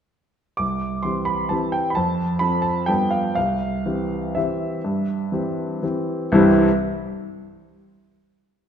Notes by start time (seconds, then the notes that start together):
0.57 C2 D6
1.03 E3 C4 G4 C6
1.25 B5
1.49 E3 C4 G4 A5
1.72 G5
1.90 B5
1.95 F2 A5
2.39 F3 C4 A4 B5
2.62 A5
2.86 G2 F3 B3 A4 G5
3.11 F5
3.35 C2 F5
3.86 E3 C4 G4
4.35 E3 C4 G4 E5
4.84 G2
5.32 E3 C4 G4
5.83 E3 C4 G4
6.32 C2 G2 E3 G3 C4 E4